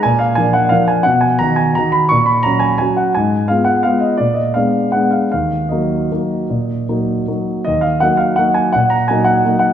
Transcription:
<<
  \new Staff \with { instrumentName = "Grand piano" } { \time 3/4 \key ees \minor \tempo 4 = 169 aes''8 f''8 aes''8 ges''8 f''8 aes''8 | fis''8 aes''8 bes''8 aes''8 bes''8 b''8 | des'''8 ces'''8 bes''8 aes''8 aes''8 ges''8 | aes''4 f''8 ges''8 f''8 ees''8 |
d''8 ees''8 f''4 ges''8 f''8 | f''4 ees''2~ | ees''2 r4 | ees''8 f''8 ges''8 f''8 ges''8 aes''8 |
ges''8 bes''8 aes''8 ges''4 ges''8 | }
  \new Staff \with { instrumentName = "Grand piano" } { \time 3/4 \key ees \minor bes,4 <f d' bes'>4 <f d' bes'>4 | b,4 <dis dis' fis'>4 <dis dis' fis'>4 | bes,4 <ges des' ges'>4 <ges des' ges'>4 | aes,4 <aes ces' f'>4 <aes ces' f'>4 |
bes,4 <aes ces' d'>4 <aes ces' d'>4 | ees,4 <ges bes ees'>4 <ges bes ees'>4 | bes,4 <ges bes ees'>4 <ges bes ees'>4 | ees,4 <ges bes ees'>4 <ges bes ees'>4 |
bes,4 <ges bes ees'>4 <ges bes ees'>4 | }
>>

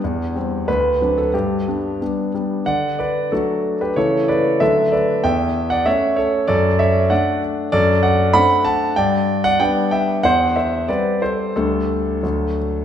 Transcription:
<<
  \new Staff \with { instrumentName = "Grand piano" } { \time 2/4 \key g \major \tempo 4 = 94 r4 b'8. a'16 | g'4 r4 | \key d \major <d'' fis''>8 <b' d''>8 <fis' a'>8. <g' b'>16 | <a' cis''>8 <b' d''>8 <a' e''>8 <b' d''>8 |
<e'' g''>8. <d'' fis''>16 <cis'' e''>8 <a' cis''>8 | <a' d''>8 <cis'' e''>8 <d'' fis''>8 r8 | \key d \mixolydian <a' d''>8 <d'' fis''>8 <fis'' b''>8 <fis'' a''>8 | <d'' g''>8. <d'' fis''>16 <d'' g''>8 <e'' g''>8 |
<c'' fis''>8 <c'' e''>8 <b' d''>8 <a' c''>8 | <d' a'>4. r8 | }
  \new Staff \with { instrumentName = "Grand piano" } { \time 2/4 \key g \major e,8 <g c'>8 d,8 <fis c' d'>8 | g,8 <g b d'>8 <g b d'>8 <g b d'>8 | \key d \major d4 <fis a d'>4 | <cis e a e'>4 <d fis a d'>4 |
e,4 <a cis'>4 | fis,4 <a d'>4 | \key d \mixolydian fis,4 <a c' d'>4 | g,4 <g b d'>4 |
e,4 <g c'>4 | <d, g a>4 <d, fis a d'>4 | }
>>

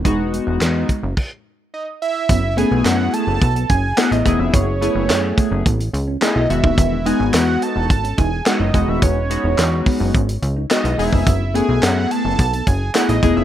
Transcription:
<<
  \new Staff \with { instrumentName = "Analog synth lead" } { \time 4/4 \key fis \dorian \tempo 4 = 107 r2. dis''8 e''8~ | e''8 gis''8 fis''8 a''4 gis''8 fis''16 dis''8 e''16 | cis''2 r4 dis''8 e''8~ | e''8 gis''8 fis''8 a''4 gis''8 fis''16 dis''8 e''16 |
cis''2 r4 dis''8 e''8~ | e''8 gis''8 fis''8 a''4 gis''8 fis''16 dis''8 e''16 | }
  \new Staff \with { instrumentName = "Clean electric guitar" } { \time 4/4 \key fis \dorian gis16 r16 gis16 r8 b16 gis16 r2 r16 | b16 r16 cis'16 r8. a16 r8 b16 cis'16 r8 e'16 r16 cis'16 | b16 r8 cis'16 r8 a16 r16 b16 r8 cis'16 r16 e'16 r16 dis'16 | e'16 r16 dis'16 r8. b16 r8 cis'16 dis'16 r8 e'16 r16 dis'16 |
e'16 r8 dis'16 r8 b16 r16 cis'16 r8 dis'16 r16 e'16 r16 dis'16 | b16 r16 cis'16 r8. a16 r8 b16 cis'16 r8 e'16 r16 cis'16 | }
  \new Staff \with { instrumentName = "Analog polysynth" } { \time 4/4 \key fis \dorian <gis b dis' fis'>4. r2 r8 | r8 <a b e' gis'>4. r4 <a b e' gis'>8 <a b e' gis'>8~ | <a b e' gis'>16 r16 <a b e' gis'>4. r4 <a b e' gis'>8 <dis gis b fis'>8~ | <dis gis b fis'>8 <gis b dis' fis'>4. r4 <gis b dis' fis'>8 <gis b dis' fis'>8~ |
<gis b dis' fis'>16 r16 <gis b dis' fis'>4. r4 <gis b dis' fis'>8 <gis b dis' gis'>8 | r8 <a b e' gis'>4. r4 <a b e' gis'>8 <a b e' gis'>8 | }
  \new Staff \with { instrumentName = "Analog synth bass" } { \clef bass \time 4/4 \key fis \dorian e,,8. e,,16 e,8 r16 fis,,16 r2 | fis,,8. b,,16 fis,8 r16 fis,,16 b,,8 fis,,8 r16 a,,16 e,,16 eis,,16 | fis,,8. fis,,16 fis,8 r16 fis,,16 a,,8 cis,8 r16 b,,16 e,,16 dis,,16 | e,,8. gis,,16 e,8 r16 e,,16 gis,,8 e,,8 r16 fis,,16 e,,16 dis,,16 |
e,,8. e,,16 e,8 r16 fis,,16 gis,,8 cis,8 r16 b,,16 e,,16 eis,,16 | fis,,8. b,,16 fis,8 r16 fis,,16 b,,8 fis,,8 r16 a,,16 e,,16 eis,,16 | }
  \new DrumStaff \with { instrumentName = "Drums" } \drummode { \time 4/4 <hh bd>8 hh8 <hc hh sn>8 <hh bd>8 <cymc bd>4 r4 | <hh bd>8 hh8 <hc hh sn>8 hh8 <hh bd>16 hh16 <hh bd>8 <hc hh sn>16 hh16 <hh bd>8 | <hh bd>8 hh8 <hc hh sn>8 <hh bd>8 <hh bd>16 hh16 hh8 <hc hh sn>8 hh16 bd16 | <hh bd>8 hh8 <hc hh sn>8 hh8 <hh bd>16 hh16 <hh bd>8 <hc hh sn>8 <hh bd>8 |
<hh bd>8 hh8 <hc hh sn>8 <hho bd>8 <hh bd>16 hh16 hh8 <hc hh sn>16 hh16 hho16 bd16 | <hh bd>8 hh8 <hc hh sn>8 hh8 <hh bd>16 hh16 <hh bd>8 <hc hh sn>16 hh16 <hh bd>8 | }
>>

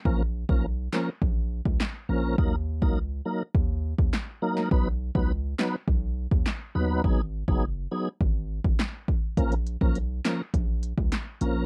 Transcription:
<<
  \new Staff \with { instrumentName = "Tonewheel organ" } { \time 4/4 \key bes \phrygian \tempo 4 = 103 <f bes des' bes'>16 r8 <f bes des' bes'>16 r8 <f bes des' bes'>16 r4. r16 <f bes des' bes'>8 | <ges bes ees' bes'>16 r8 <ges bes ees' bes'>16 r8 <ges bes ees' bes'>16 r4. r16 <ges bes ees' bes'>8 | <fis b dis' b'>16 r8 <fis b dis' b'>16 r8 <fis b dis' b'>16 r4. r16 <fis b dis' b'>8 | <ges ces' ees' aes'>16 r8 <ges ces' ees' aes'>16 r8 <ges ces' ees' aes'>16 r2 r16 |
<f bes des' bes'>16 r8 <f bes des' bes'>16 r8 <f bes des' bes'>16 r4. r16 <f bes des' bes'>8 | }
  \new Staff \with { instrumentName = "808-style bass" } { \clef bass \time 4/4 \key bes \phrygian bes,,8. ces,8. r8 bes,,8. des,16 r8 bes,,8 | ees,8. des,8. r8 ees,8. ees,16 r4 | b,,8. des,8. r8 b,,8. dis,16 r8 dis,8 | aes,,8. ges,,8. r8 aes,,8. aes,,16 r4 |
bes,,8. ces,8. r8 bes,,8. des,16 r8 bes,,8 | }
  \new DrumStaff \with { instrumentName = "Drums" } \drummode { \time 4/4 bd8. bd16 r8 <hc sn>8 bd8. bd16 <hc sn>4 | bd8. bd16 r4 bd8. bd16 <hc sn>8. sn16 | bd8. bd16 r8 <hc sn>8 bd8. bd16 <hc sn>4 | bd8. bd16 r4 bd8. bd16 <hc sn>8 bd8 |
<hh bd>16 hh16 hh16 bd16 hh8 <hc hh sn>8 <hh bd>8 hh16 bd16 <hc hh sn>8 hh8 | }
>>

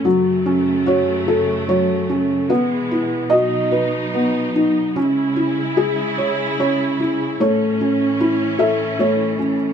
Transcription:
<<
  \new Staff \with { instrumentName = "Felt piano" } { \time 3/4 \key fis \dorian \tempo 4 = 74 << { r4 cis''4 cis''4 | b'4 dis''4. r8 | r2 cis''4 | cis''4. e''8 cis''8. r16 | } \\ { fis8 cis'8 fis'8 a'8 fis8 cis'8 | b8 e'8 fis'8 b'8 b8 dis'8 | cis'8 e'8 gis'8 cis''8 cis'8 e'8 | a8 cis'8 e'8 a'8 a8 cis'8 | } >> }
  \new Staff \with { instrumentName = "String section" } { \clef bass \time 3/4 \key fis \dorian << { <cis a>2. | <e gis>4 <fis dis'>2 | <gis e'>2. | <e cis'>2. | } \\ { fis,2. | b,2. | cis2. | a,2. | } >> }
>>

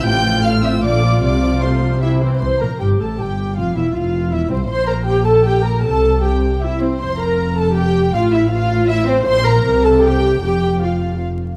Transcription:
<<
  \new Staff \with { instrumentName = "Violin section" } { \time 3/4 \key f \major \tempo 4 = 156 g'''4 f'''8 e'''8 d'''4 | d'''4 c'''4 e''8 c''8 | c'''8 bes''8 g''8 a''8 g''4 | f''8 e''8 f''4 e''8 c''8 |
c'''8 bes''8 g''8 a''8 g''8 bes''8 | a''4 g''4 e''8 c''8 | c'''8 bes''4 a''8 g''4 | f''8 e''8 f''4 e''8 c''8 |
c'''8 bes''4 a''8 g''4 | g''4 f''4 r4 | }
  \new Staff \with { instrumentName = "Violin section" } { \time 3/4 \key f \major g''4 f''8 e''8 d''4 | d''4 c''4 e''8 c''8 | c'''8 bes''8 g''8 a''8 g''4 | f''8 e''8 f''4 e''8 c''8 |
c'''8 bes''8 g''8 a''8 g''8 bes''8 | a''4 g''4 e''8 c''8 | c'''8 bes''4 a''8 g''4 | f''8 e''8 f''4 e''8 c''8 |
c'''8 bes''4 a''8 g''4 | g''4 f''4 r4 | }
  \new Staff \with { instrumentName = "Viola section" } { \time 3/4 \key f \major << { f'2.~ | f'2 e'8 c'8 | c''8 bes'8 g'8 a'8 g'4 | f'8 e'8 f'4 e'8 c'8 |
c''8 bes'8 g'8 a'8 g'8 bes'8 | a'4 g'4 e'8 c'8 | c''8 bes'4 a'8 g'4 | f'8 e'8 f'4 e'8 c'8 |
c''8 bes'4 a'8 g'4 | g'4 f'4 r4 | } \\ { c8 f8 a8 c'8 d8 f8 | c8 f8 a8 f8 c8 e8 | r2. | r2. |
r2. | r2. | r2. | r2. |
r2. | r2. | } >> }
  \new Staff \with { instrumentName = "Cello section" } { \clef bass \time 3/4 \key f \major a,2 bes,4 | c2~ c8 r8 | c8 bes,8 g,8 a,8 g,4 | f,8 e,8 f,4 e,8 c,8 |
bes,2. | c2~ c8 r8 | f,2. | a,2. |
bes,4 c2 | f,2~ f,8 r8 | }
  \new Staff \with { instrumentName = "Double bass section" } { \clef bass \time 3/4 \key f \major a,,2 bes,,4 | c,2~ c,8 r8 | c,8 bes,,8 g,,8 a,,8 g,,4 | f,,8 e,,8 f,,4 e,,8 c,8 |
bes,,2. | c,2~ c,8 r8 | f,,2. | a,,2. |
bes,,4 c,2 | f,,2~ f,,8 r8 | }
>>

